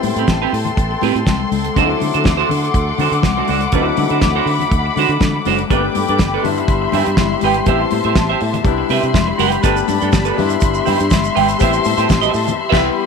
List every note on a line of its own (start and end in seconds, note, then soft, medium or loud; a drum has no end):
0.00 0.12 A2 medium
0.00 1.71 G3 medium
0.00 1.71 B3 medium
0.00 1.72 C4 medium
0.00 1.73 E4 medium
0.00 5.66 A4 medium
0.00 1.72 G5 medium
0.00 1.74 A5 medium
0.00 3.69 C6 medium
0.00 muted clean electric guitar stroke soft
0.00 open hi-hat medium
0.00 muted conga medium
0.16 0.24 A2 loud
0.16 0.28 C4 medium
0.16 0.28 G4 soft
0.16 0.28 B4 medium
0.16 closed hi-hat soft
0.27 0.45 A1 loud
0.27 muted clean electric guitar stroke soft
0.27 kick loud
0.27 snare loud
0.27 closed hi-hat medium
0.27 high conga medium
0.42 0.51 C4 medium
0.42 0.53 G4 medium
0.42 0.53 B4 medium
0.52 0.70 A2 medium
0.52 muted clean electric guitar stroke soft
0.52 open hi-hat medium
0.65 muted clean electric guitar stroke soft
0.65 closed hi-hat soft
0.65 low conga medium
0.77 0.94 A1 medium
0.77 kick loud
0.77 closed hi-hat medium
0.91 muted clean electric guitar stroke soft
1.02 1.11 A2 loud
1.02 1.17 C4 medium
1.02 1.15 G4 loud
1.02 1.14 B4 medium
1.02 open hi-hat medium
1.02 muted conga medium
1.15 1.23 A2 medium
1.15 muted clean electric guitar stroke soft
1.15 closed hi-hat soft
1.26 1.44 C2 medium
1.26 muted clean electric guitar stroke soft
1.26 kick loud
1.26 snare medium
1.26 closed hi-hat medium
1.26 high conga medium
1.39 muted clean electric guitar stroke medium
1.39 high conga soft
1.51 1.68 C#2 medium
1.51 open hi-hat medium
1.51 high conga medium
1.64 muted clean electric guitar stroke soft
1.64 closed hi-hat soft
1.75 1.94 D2 loud
1.75 3.69 F#3 medium
1.75 3.69 A3 medium
1.75 3.69 C4 medium
1.75 1.91 D4 medium
1.75 1.83 D#4 medium
1.75 1.90 F#4 medium
1.75 1.89 C5 medium
1.75 5.67 F#5 medium
1.75 5.67 D6 medium
1.75 kick loud
1.75 closed hi-hat medium
1.75 muted conga soft
1.84 3.73 E4 medium
1.90 muted clean electric guitar stroke soft
2.00 2.10 D3 medium
2.00 muted clean electric guitar stroke soft
2.00 open hi-hat medium
2.00 muted conga medium
2.14 2.22 D3 medium
2.14 2.25 D4 soft
2.14 2.25 F#4 soft
2.14 2.24 C5 medium
2.14 closed hi-hat soft
2.24 2.42 D2 loud
2.24 muted clean electric guitar stroke soft
2.24 kick loud
2.24 snare loud
2.24 closed hi-hat medium
2.24 high conga medium
2.37 2.49 D4 medium
2.37 2.49 F#4 medium
2.37 2.50 C5 medium
2.49 2.67 D3 loud
2.49 muted clean electric guitar stroke soft
2.49 open hi-hat medium
2.49 low conga medium
2.63 muted clean electric guitar stroke soft
2.63 closed hi-hat soft
2.74 2.91 D2 medium
2.74 kick loud
2.74 closed hi-hat medium
2.88 muted clean electric guitar stroke soft
2.98 3.08 D3 loud
2.98 3.14 D4 medium
2.98 3.13 F#4 medium
2.98 3.12 C5 medium
2.98 open hi-hat medium
2.98 muted conga medium
2.98 low conga medium
3.12 3.20 D3 medium
3.12 muted clean electric guitar stroke medium
3.12 closed hi-hat soft
3.22 3.41 C2 medium
3.22 muted clean electric guitar stroke soft
3.22 kick loud
3.22 snare loud
3.22 closed hi-hat medium
3.22 high conga medium
3.37 3.48 D4 medium
3.37 3.48 F#4 medium
3.37 3.49 C5 medium
3.37 high conga medium
3.48 3.66 C#2 medium
3.48 3.60 D4 medium
3.48 3.61 F#4 medium
3.48 3.60 C5 medium
3.48 open hi-hat medium
3.48 high conga medium
3.60 muted clean electric guitar stroke soft
3.60 closed hi-hat soft
3.72 3.90 D2 loud
3.72 5.66 F#3 medium
3.72 5.66 A3 medium
3.72 5.67 C4 medium
3.72 3.93 D4 medium
3.72 3.80 D#4 medium
3.72 3.87 F#4 medium
3.72 3.86 C5 medium
3.72 5.68 B5 medium
3.72 kick loud
3.72 closed hi-hat medium
3.72 muted conga soft
3.81 5.70 E4 medium
3.87 muted clean electric guitar stroke soft
3.97 4.07 D3 loud
3.97 muted clean electric guitar stroke soft
3.97 open hi-hat medium
3.97 muted conga medium
4.10 4.19 D3 medium
4.10 4.22 D4 soft
4.10 4.22 F#4 soft
4.10 4.21 C5 soft
4.10 closed hi-hat soft
4.21 4.39 D2 loud
4.21 muted clean electric guitar stroke soft
4.21 kick loud
4.21 snare loud
4.21 closed hi-hat medium
4.21 high conga medium
4.36 4.47 D4 medium
4.36 4.47 F#4 medium
4.36 4.48 C5 medium
4.46 4.63 D3 medium
4.46 muted clean electric guitar stroke soft
4.46 open hi-hat medium
4.59 muted clean electric guitar stroke soft
4.59 closed hi-hat soft
4.59 low conga medium
4.71 4.89 D2 loud
4.71 kick loud
4.71 closed hi-hat medium
4.86 muted clean electric guitar stroke soft
4.96 5.05 D3 medium
4.96 5.12 D4 medium
4.96 5.11 F#4 medium
4.96 5.10 C5 medium
4.96 open hi-hat medium
4.96 muted conga soft
5.09 5.17 D3 loud
5.09 muted clean electric guitar stroke soft
5.09 closed hi-hat soft
5.20 5.38 D3 medium
5.20 muted clean electric guitar stroke soft
5.20 kick loud
5.20 snare loud
5.20 closed hi-hat medium
5.20 high conga medium
5.34 muted clean electric guitar stroke soft
5.34 high conga medium
5.45 5.63 F#1 medium
5.45 5.61 D4 medium
5.45 5.58 F#4 medium
5.45 5.57 C5 medium
5.45 open hi-hat medium
5.45 high conga medium
5.58 muted clean electric guitar stroke soft
5.58 closed hi-hat soft
5.70 5.88 G1 loud
5.70 6.41 G3 medium
5.70 6.44 A3 medium
5.70 5.77 A#3 medium
5.70 5.85 D4 medium
5.70 6.43 D4 medium
5.70 6.44 A4 medium
5.70 5.84 A4 medium
5.70 5.83 B4 medium
5.70 6.44 G5 medium
5.70 7.66 B5 medium
5.70 6.44 D6 medium
5.70 kick loud
5.70 closed hi-hat medium
5.76 6.42 B3 medium
5.84 muted clean electric guitar stroke soft
5.95 6.04 G2 medium
5.95 muted clean electric guitar stroke soft
5.95 open hi-hat medium
5.95 muted conga medium
6.08 6.17 G2 medium
6.08 6.20 D4 soft
6.08 6.19 A4 medium
6.08 6.19 B4 medium
6.08 closed hi-hat soft
6.19 6.36 G1 loud
6.19 muted clean electric guitar stroke soft
6.19 kick loud
6.19 snare loud
6.19 closed hi-hat medium
6.19 high conga medium
6.34 6.47 D4 medium
6.34 6.45 A4 medium
6.34 6.45 B4 medium
6.42 6.61 G2 medium
6.42 7.16 G3 medium
6.42 7.16 B3 medium
6.42 7.17 D4 medium
6.42 7.16 E4 medium
6.42 8.64 G4 medium
6.42 7.66 E5 medium
6.42 8.64 C6 medium
6.42 muted clean electric guitar stroke soft
6.42 open hi-hat medium
6.42 low conga medium
6.58 muted clean electric guitar stroke soft
6.58 closed hi-hat soft
6.68 6.86 G1 loud
6.68 kick loud
6.68 closed hi-hat medium
6.82 muted clean electric guitar stroke soft
6.92 7.02 G2 loud
6.92 7.08 G4 medium
6.92 7.07 B4 medium
6.92 7.06 E5 medium
6.92 open hi-hat medium
6.92 muted conga soft
6.92 low conga medium
7.06 7.15 G2 loud
7.06 muted clean electric guitar stroke soft
7.06 closed hi-hat soft
7.17 7.34 G1 medium
7.17 7.41 G3 medium
7.17 7.41 E4 medium
7.17 muted clean electric guitar stroke soft
7.17 kick loud
7.17 snare loud
7.17 closed hi-hat medium
7.17 high conga medium
7.32 muted clean electric guitar stroke soft
7.41 7.60 G#1 medium
7.41 7.65 B3 medium
7.41 7.89 G4 medium
7.41 7.58 G4 medium
7.41 7.57 B4 medium
7.41 open hi-hat medium
7.41 high conga medium
7.45 7.57 G5 medium
7.54 muted clean electric guitar stroke soft
7.54 closed hi-hat soft
7.65 7.84 A1 loud
7.65 8.62 G3 medium
7.65 8.63 B3 medium
7.65 8.64 C4 medium
7.65 8.64 E4 medium
7.65 7.82 G4 medium
7.65 7.81 C5 medium
7.65 9.62 E5 medium
7.65 7.80 E5 medium
7.65 8.65 A5 medium
7.65 kick loud
7.65 closed hi-hat medium
7.65 muted conga soft
7.81 muted clean electric guitar stroke soft
7.91 8.01 A2 medium
7.91 muted clean electric guitar stroke soft
7.91 open hi-hat medium
7.91 muted conga medium
8.04 8.13 A2 loud
8.04 8.16 G4 soft
8.04 8.16 C5 soft
8.04 8.15 E5 medium
8.04 closed hi-hat soft
8.15 8.33 A1 medium
8.15 muted clean electric guitar stroke soft
8.15 kick loud
8.15 snare loud
8.15 closed hi-hat medium
8.15 high conga medium
8.30 8.40 G4 medium
8.30 8.40 C5 medium
8.30 8.41 E5 medium
8.41 8.58 A2 loud
8.41 muted clean electric guitar stroke soft
8.41 open hi-hat medium
8.54 muted clean electric guitar stroke medium
8.54 closed hi-hat soft
8.54 low conga medium
8.63 8.82 C2 loud
8.63 9.61 G3 medium
8.63 9.61 B3 medium
8.63 9.62 D4 medium
8.63 9.62 E4 medium
8.63 11.58 G4 medium
8.63 11.58 B5 medium
8.63 9.63 C6 medium
8.63 kick loud
8.63 closed hi-hat medium
8.78 muted clean electric guitar stroke soft
8.89 8.99 C3 loud
8.89 9.05 G4 medium
8.89 9.02 B4 medium
8.89 9.01 E5 medium
8.89 open hi-hat medium
8.89 muted conga soft
9.02 9.11 C3 medium
9.02 muted clean electric guitar stroke soft
9.02 closed hi-hat soft
9.14 9.31 F1 medium
9.14 muted clean electric guitar stroke soft
9.14 kick loud
9.14 snare loud
9.14 closed hi-hat medium
9.14 high conga medium
9.27 muted clean electric guitar stroke medium
9.38 9.56 F#1 medium
9.38 9.59 G4 medium
9.38 9.52 B4 medium
9.38 9.51 G5 loud
9.38 open hi-hat medium
9.38 high conga medium
9.52 muted clean electric guitar stroke soft
9.52 closed hi-hat soft
9.63 9.81 G1 loud
9.63 10.37 A3 medium
9.63 10.35 B3 medium
9.63 9.78 D4 medium
9.63 10.37 D4 medium
9.63 10.38 G4 medium
9.63 9.77 A4 medium
9.63 9.75 B4 loud
9.63 10.37 D5 medium
9.63 10.37 A5 medium
9.63 kick loud
9.63 closed hi-hat medium
9.63 shaker medium
9.76 muted clean electric guitar stroke soft
9.76 shaker medium
9.88 9.98 G2 medium
9.88 muted clean electric guitar stroke soft
9.88 open hi-hat medium
9.88 muted conga medium
9.88 shaker medium
10.01 10.10 G2 loud
10.01 10.10 D4 soft
10.01 10.11 A4 soft
10.01 10.11 B4 soft
10.01 closed hi-hat soft
10.01 shaker soft
10.12 10.30 G1 loud
10.12 muted clean electric guitar stroke soft
10.12 kick loud
10.12 snare loud
10.12 closed hi-hat medium
10.12 high conga medium
10.12 shaker medium
10.25 10.40 D4 medium
10.25 10.36 A4 medium
10.25 10.36 B4 medium
10.25 shaker medium
10.36 10.55 G2 medium
10.36 11.57 G3 medium
10.36 11.58 B3 medium
10.36 11.58 D4 medium
10.36 11.59 E4 medium
10.36 13.06 E5 medium
10.36 12.57 C6 loud
10.36 muted clean electric guitar stroke soft
10.36 open hi-hat medium
10.36 low conga medium
10.49 muted clean electric guitar stroke medium
10.49 closed hi-hat soft
10.49 shaker medium
10.61 10.79 G1 loud
10.61 kick loud
10.61 closed hi-hat medium
10.61 shaker medium
10.74 muted clean electric guitar stroke soft
10.74 shaker medium
10.86 10.96 G2 loud
10.86 11.01 G4 medium
10.86 10.99 B4 medium
10.86 10.97 E5 medium
10.86 open hi-hat medium
10.86 muted conga soft
10.86 low conga medium
10.86 shaker soft
10.98 11.08 G2 loud
10.98 muted clean electric guitar stroke medium
10.98 closed hi-hat soft
10.98 shaker medium
11.10 11.28 G1 medium
11.10 muted clean electric guitar stroke soft
11.10 kick loud
11.10 snare loud
11.10 closed hi-hat medium
11.10 high conga medium
11.10 shaker medium
11.24 muted clean electric guitar stroke soft
11.24 shaker medium
11.35 11.53 G#1 loud
11.35 11.50 G4 medium
11.35 11.48 B4 medium
11.35 11.48 G5 medium
11.35 open hi-hat medium
11.35 high conga medium
11.48 muted clean electric guitar stroke soft
11.48 closed hi-hat soft
11.48 shaker medium
11.59 11.78 A1 loud
11.59 12.56 G3 medium
11.59 12.56 B3 medium
11.59 12.57 C4 medium
11.59 12.57 E4 medium
11.59 12.57 G4 medium
11.59 11.75 G4 medium
11.59 11.73 C5 medium
11.59 11.72 E5 medium
11.59 12.57 A5 medium
11.59 kick loud
11.59 closed hi-hat medium
11.59 muted conga soft
11.59 shaker medium
11.73 muted clean electric guitar stroke soft
11.73 shaker medium
11.84 11.94 A2 loud
11.84 muted clean electric guitar stroke soft
11.84 open hi-hat medium
11.84 muted conga medium
11.84 shaker medium
11.97 12.06 A2 loud
11.97 12.08 G4 soft
11.97 12.08 C5 medium
11.97 12.08 E5 medium
11.97 closed hi-hat medium
11.97 shaker soft
12.09 12.27 A1 loud
12.09 muted clean electric guitar stroke soft
12.09 kick loud
12.09 snare loud
12.09 closed hi-hat medium
12.09 high conga medium
12.09 shaker medium
12.21 12.32 G4 medium
12.21 12.32 C5 medium
12.21 12.33 E5 medium
12.21 shaker medium
12.33 12.51 A2 medium
12.33 12.57 A5 medium
12.33 muted clean electric guitar stroke soft
12.33 open hi-hat medium
12.33 shaker medium
12.46 muted clean electric guitar stroke soft
12.46 closed hi-hat soft
12.46 low conga medium
12.46 shaker medium
12.58 13.06 G4 medium
12.58 13.06 B5 medium
12.58 13.06 C6 medium
12.69 12.89 C2 loud
12.69 12.88 G3 medium
12.69 12.88 B3 loud
12.69 12.88 G4 medium
12.69 12.87 B4 loud
12.69 12.87 E5 loud
12.69 12.88 E5 loud
12.69 kick loud
12.69 crash medium
12.74 12.90 E4 loud
12.74 snare loud